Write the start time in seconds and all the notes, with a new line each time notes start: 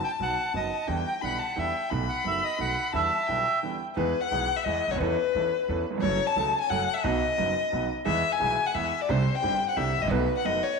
Already playing: A5
0.04 G5
0.19 B1 B2 D#3 F#3 B3 F#4 F#5
0.54 F#1 F#2 D#3 F#3 B3 F#4 D#5
0.87 E2 D3 E3 G3 B3 E4 G5
1.08 G5
1.21 B1 B2 D3 G3 B3 E4 F#5 B5
1.39 A5
1.56 E2 D3 E3 G3 B3 E4 E5 G5
1.90 B1 B2 D#3 A3 B3 F#4 B5
2.09 F#5
2.24 F#1 F#2 D#3 A3 B3 F#4 E5
2.44 D#5
2.58 B1 B2 D#3 A3 B3 F#4 F#5
2.93 E2 D3 E3 G3 B3 E4 E5 A5
3.27 B1 B2 D3 G3 B3 E4 G5
3.63 E2 D3 E3 G3 B3 E4
3.96 E2 E3 G#3 B3 G#4 B4
4.21 F#5
4.31 B1 B2 E3 G#3 B3 G#4
4.56 E5
4.64 E2 E3 G#3 B3 G#4 D#5
4.87 C#2 C#5
4.92 D2 D#2
4.96 D#2 B3 B4
5.00 E2 E3 C#4 A4
5.35 E2 E3 B3 C#4 A4
5.69 E2 E3 B3 C#4 A4
5.90 D#2 E2
5.98 F2 C#5
6.03 F#1 F#2 F#3 A3 C#4 A4
6.27 A5
6.36 C#2 C#3 F#3 A3 C#4 A4
6.60 G#5
6.69 F#1 F#2 F#3 A3 C#4 A4 F#5
6.94 E5
7.03 B1 B2 D#3 F#3 B3 F#4 D#5
7.37 F#1 F#2 D#3 F#3 B3 F#4
7.72 B1 B2 D#3 F#3 B3 F#4
8.05 E2 E3 G#3 B3 G#4 E5
8.32 G#5
8.39 B1 B2 E3 G#3 B3 G#4
8.66 F#5
8.74 E2 E3 G#3 B3 G#4 E5
9.01 D5
9.08 C2 C3 D3 G3 C4 G4 C5
9.35 G5
9.42 G1 G2 D3 G3 C4 G4
9.69 F#5
9.76 C2 C3 D3 G3 C4 G4 E5
9.98 G#1 D#5
10.02 A1 A#1
10.07 A#1 B1 B2 D#3 A3 B3 F#4 B4
10.11 B1
10.37 F#5
10.45 F#1 F#2 D#3 A3 B3 F#4 D#5
10.62 C#5